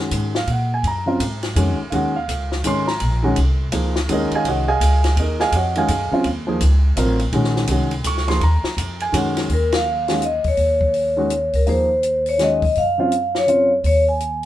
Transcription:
Already playing: upright bass F#2, grand piano D#3 G#3 C#4 F#4
0.11 upright bass G#2, hi-hat pedal, ride
0.35 grand piano F5, snare
0.47 upright bass A#2, grand piano F#5, ride
0.74 grand piano G#5
0.83 upright bass F#2, ride
0.87 grand piano A#5
1.06 grand piano C#3 F#3 C4 F4
1.20 upright bass G#2, hi-hat pedal, ride
1.43 snare, ride
1.56 upright bass F2, grand piano D#3 G#3 C#4 F#4, hi-hat pedal, ride
1.79 muted upright bass stroke
1.90 upright bass D#2, grand piano D#3 G#3 C#4 F#4 F5 F#5, ride
2.16 grand piano F5
2.28 upright bass C#2, hi-hat pedal, ride
2.52 snare
2.64 upright bass G#1, grand piano D#3 G#3 C#4 D#4 C6, hi-hat pedal, ride
2.88 grand piano A#5, snare
3.00 upright bass A#1, ride
3.23 grand piano D#3 G#3 C#4 F#4
3.36 upright bass C2, hi-hat pedal, ride
3.72 upright bass C#2, grand piano F3 A#3 D#4 G#4, hi-hat pedal, ride
3.96 snare
4.08 upright bass D#2, grand piano D#3 G#3 C#4 F#4 G#4, ride
4.13 grand piano D#4 A#4 D#5
4.31 muted upright bass stroke, ride
4.35 grand piano G#4 D#5 F5 G#5
4.45 upright bass C2, grand piano C#5 D#5 F#5, ride
4.49 grand piano F#4
4.68 grand piano G#4 D#5 F5 G#5
4.80 upright bass C#2, hi-hat pedal, ride
5.04 snare, ride
5.16 upright bass D#2, grand piano G#4 D#5, ride
5.21 grand piano D#4 A#4
5.40 grand piano G#4 D#5 F5 G#5, snare
5.52 upright bass F2, grand piano F#4 D#5 F#5, hi-hat pedal, ride
5.57 grand piano C#5
5.75 grand piano D#3 G#3 C#4 F#4 G#4 D#5 F5 G#5, ride
5.88 upright bass F#2, hi-hat pedal, ride
6.11 grand piano C#3 F#3 C4 F4, muted upright bass stroke
6.24 upright bass D#2, ride
6.47 grand piano F3 A#3 D#4 G#4
6.61 upright bass C#2, hi-hat pedal, ride
6.96 upright bass A1, grand piano F#3 C4 F4 A#4, hi-hat pedal, ride
7.19 ride
7.33 upright bass A#1, grand piano D#3 G#3 C#4 F#4, ride
7.44 snare
7.56 snare
7.67 upright bass C2, grand piano D#3 G#3 C#4 F#4, hi-hat pedal, ride
7.91 ride
8.04 upright bass C#2, grand piano C#6, hi-hat pedal, ride
8.18 snare
8.28 grand piano F3 A#3 D#4 G#4 C6, snare, ride
8.41 upright bass D#2, grand piano A#5, ride
8.63 muted upright bass stroke, snare
8.77 upright bass F2, hi-hat pedal, ride
9.00 grand piano G#5, ride
9.12 upright bass F#2, grand piano D#3 G#3 C#4 F#4 F#5, hi-hat pedal, ride
9.37 snare, ride
9.49 upright bass D#2, vibraphone A#4, open hi-hat
9.72 vibraphone F5, snare, ride
10.08 grand piano D#3 G#3 C#4 F#4, snare, open hi-hat
10.22 vibraphone D#5, closed hi-hat
10.44 upright bass E2, vibraphone C#5, kick, open hi-hat
10.57 upright bass D#2, open hi-hat
10.81 kick
10.94 open hi-hat
11.17 grand piano D#3 G#3 C#4 F#4
11.30 closed hi-hat
11.53 upright bass C#2, vibraphone A#4, open hi-hat
11.66 upright bass D#2, grand piano F3 A#3 D#4 G#4, vibraphone C5, open hi-hat
12.03 closed hi-hat
12.26 vibraphone C#5, open hi-hat
12.38 grand piano D#3 G#3 C#4 F#4, snare, closed hi-hat
12.42 vibraphone D#5
12.62 vibraphone D#5, kick, open hi-hat
12.75 upright bass F#2, vibraphone F5, open hi-hat
12.98 grand piano C#3 F#3 C4 F4
13.12 closed hi-hat
13.35 vibraphone C#5, snare
13.47 grand piano C#3 F#3 C4 F4, closed hi-hat
13.84 upright bass D#2, vibraphone C#5, open hi-hat
14.09 vibraphone G#5
14.20 closed hi-hat

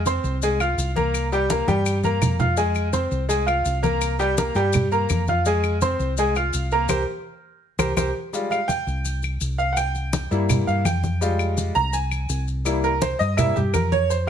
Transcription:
Already playing: fingered electric bass F2
0.06 upright piano C4 C5 C6, high conga, maracas
0.24 fingered electric bass C2, high conga, maracas
0.42 upright piano G#3 G#4 G#5, high conga, maracas
0.60 upright piano F4 F5 F6, high conga, claves, maracas
0.78 fingered electric bass C2, high conga, maracas
0.96 upright piano A#3 A#4 A#5, high conga, maracas
1.14 high conga, claves, maracas
1.32 upright piano G3 G4 G5, high conga, maracas
1.50 upright piano A#3 A#4 A#5, high conga, maracas
1.67 fingered electric bass G2, upright piano G3 G4 G5, high conga, maracas
1.86 claves, maracas
2.04 upright piano A#3 A#4 A#5, high conga, maracas
2.21 fingered electric bass F2, low conga, claves, maracas
2.39 upright piano F4 F5 F6, low conga, maracas
2.57 upright piano G#3 G#4 G#5, high conga, maracas
2.75 high conga, claves, maracas
2.93 upright piano C4 C5 C6, high conga, maracas
3.11 fingered electric bass C2, high conga, maracas
3.29 upright piano G#3 G#4 G#5, high conga, maracas
3.46 upright piano F4 F5 F6, high conga, claves, maracas
3.65 fingered electric bass C2, high conga, maracas
3.82 upright piano A#3 A#4 A#5, high conga, maracas
4.01 high conga, claves, maracas
4.19 upright piano G3 G4 G5, high conga, maracas
4.38 upright piano A#3 A#4 A#5, high conga, maracas
4.55 fingered electric bass G2, upright piano G3 G4 G5, high conga, maracas
4.73 high conga, low conga, claves, maracas
4.92 upright piano A#3 A#4 A#5, high conga, maracas
5.09 fingered electric bass F2, high conga, claves, maracas
5.27 upright piano F4 F5 F6, high conga, maracas
5.45 upright piano G#3 G#4 G#5, high conga, maracas
5.64 high conga, claves, maracas
5.81 upright piano C4 C5 C6, high conga, maracas
6.00 fingered electric bass C2, high conga, maracas
6.17 upright piano G#3 G#4 G#5, high conga, maracas
6.35 upright piano F4 F5 F6, high conga, claves, maracas
6.53 fingered electric bass C2, high conga, maracas
6.71 upright piano A#3 A#4 A#5, maracas
6.89 fingered electric bass C2, upright piano G4 A#4 C5, high conga, claves, maracas
7.79 fingered electric bass C2, upright piano G4 A#4 C5, high conga, claves, maracas
7.97 fingered electric bass C2, upright piano G4 A#4 C5, high conga, claves, maracas
8.33 upright piano G3 G#3 F4, high conga, maracas
8.50 upright piano F5, high conga, claves, maracas
8.68 upright piano G5, high conga, maracas
8.87 fingered electric bass C2, high conga, maracas
9.05 high conga, maracas
9.23 high conga, claves, maracas
9.41 fingered electric bass C2, high conga, maracas
9.58 upright piano F5, maracas
9.73 upright piano F#5, high conga
9.77 upright piano G5, claves, maracas
9.95 high conga, maracas
10.13 high conga, maracas
10.31 fingered electric bass G2, upright piano G3 A#3 E4, high conga, maracas
10.50 high conga, low conga, claves, maracas
10.67 fingered electric bass G2, upright piano F5, high conga, maracas
10.85 fingered electric bass F2, upright piano G5, high conga, claves, maracas
11.04 high conga, maracas
11.21 upright piano G3 G#3 F4, high conga, maracas
11.39 high conga, claves, maracas
11.57 high conga, maracas
11.75 fingered electric bass C2, upright piano A#5, high conga, maracas
11.93 upright piano G#5, high conga, maracas
12.11 high conga, claves, maracas
12.29 fingered electric bass C2, high conga, maracas
12.48 maracas
12.65 upright piano G3 A#3 E4, high conga, claves, maracas
12.84 upright piano A#4, high conga, maracas
13.02 upright piano C5, high conga, maracas
13.19 fingered electric bass G2, upright piano D#5, high conga, maracas
13.37 upright piano G3 A#3 E4 E5, high conga, low conga, claves, maracas
13.56 fingered electric bass G2, upright piano G4, high conga, low conga, maracas
13.74 fingered electric bass F2, upright piano A#4, high conga, claves, maracas
13.92 upright piano C#5, high conga, maracas
14.10 upright piano C5, high conga, maracas

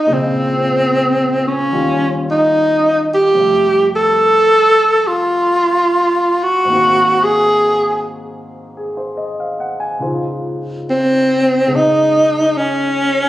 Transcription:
Already playing: tenor saxophone D#4
0.06 grand piano A#2 C#3 F3 G#3 C5
0.13 tenor saxophone C4
1.48 tenor saxophone C#4
1.72 grand piano D#2 D#3 G3 C#4 F4
2.31 tenor saxophone D#4
3.14 tenor saxophone G4
3.34 grand piano F2 C3 G3
3.39 grand piano A3 E5
3.96 tenor saxophone A4
5.07 tenor saxophone F4
6.43 tenor saxophone F#4
6.65 grand piano G#2 D#3
6.69 grand piano A#3 C4
6.75 grand piano F#4
7.24 tenor saxophone G#4
8.77 grand piano G#4
8.97 grand piano C5
9.17 grand piano D#5
9.40 grand piano F5
9.60 grand piano F#5
9.80 grand piano G#5
9.99 grand piano C#2 C#3 D#4 C5
10.04 grand piano F4
10.90 tenor saxophone C4
11.66 grand piano C#3 G#3 C#4 D#4
11.76 tenor saxophone D#4
12.57 tenor saxophone C#4

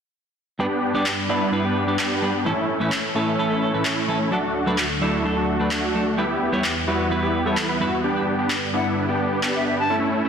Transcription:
0.59 clean electric guitar G2 G3 B3 D4 B4, analog synth pad G2 G3 D4 B4, supersaw synth B3 D4 G4
0.94 clean electric guitar G2 G3 B3 D4 D5, supersaw synth B3 D4 G4
1.06 clap
1.29 clean electric guitar G2 G3 B3 D4 B4, supersaw synth B3 D4 E4
1.52 clean electric guitar G2 G3 B3 D4 B4
1.64 supersaw synth B3 D4 G4
1.87 clean electric guitar G2 G3 B3 D4 D5
1.99 supersaw synth B3 D4 G4, clap
2.22 clean electric guitar G3 B3 D4 B4
2.45 clean electric guitar A2 E3 A3 C#4 A4, analog synth pad A2 E3 C#4 A4, supersaw synth A3 C#4 E4
2.80 clean electric guitar A2 E3 A3 C#4 B4, supersaw synth A3 C#4 E4
2.92 clap
3.15 clean electric guitar A2 E3 A3 C#4 A4, supersaw synth A3 C#4 E4
3.38 clean electric guitar A2 E3 A3 C#4 A4
3.50 supersaw synth A3 C#4 E4
3.73 clean electric guitar A2 E3 A3 C#4 B4
3.85 supersaw synth A3 C#4 E4, clap
4.08 clean electric guitar E3 A3 C#4 A4
4.31 analog synth pad D2 D3 A3 F#4, clean electric guitar F#3 A3 D4 A4, supersaw synth A3 D4 F#4
4.66 clean electric guitar F#3 A3 D4 B4, supersaw synth A3 D4 F#4
4.78 clap
5.01 clean electric guitar F#3 A3 D4 A4, supersaw synth A3 D4 E4
5.24 clean electric guitar F#3 A3 D4 A4
5.37 supersaw synth A3 D4 F#4
5.59 clean electric guitar F#3 A3 D4 B4
5.71 supersaw synth A3 D4 F#4, clap
5.94 clean electric guitar F#3 A3 D4 A4
6.17 analog synth pad E2 E3 G3 B3, clean electric guitar G3 B3 E4 B4, supersaw synth B3 E4 G4
6.52 clean electric guitar G3 B3 E4 C#5, supersaw synth B3 E4 G4
6.64 clap
6.87 clean electric guitar G3 B3 E4 B4, supersaw synth B3 E4 F#4
7.10 clean electric guitar G3 B3 E4 B4
7.22 supersaw synth B3 E4 G4
7.45 clean electric guitar G3 B3 E4 C#5, supersaw synth B3 E4 A4
7.57 clap
7.69 supersaw synth B3 E4 B4
7.80 clean electric guitar G2 G3 B3 E4 B4, supersaw synth B3 E4 F#4
8.04 analog synth pad G2 D3 B3, supersaw synth B3 D4 G4
8.39 supersaw synth B3 D4 G4
8.50 clap
8.74 supersaw synth B3 D4 E4, flute F#5
9.09 supersaw synth B3 D4 G4
9.43 supersaw synth B3 D4 G4, clap
9.55 flute E5
9.67 flute E5
9.78 flute A5
9.90 analog synth pad A2 E3 C#4 A4, supersaw synth A3 C#4 E4
10.25 supersaw synth A3 C#4 E4

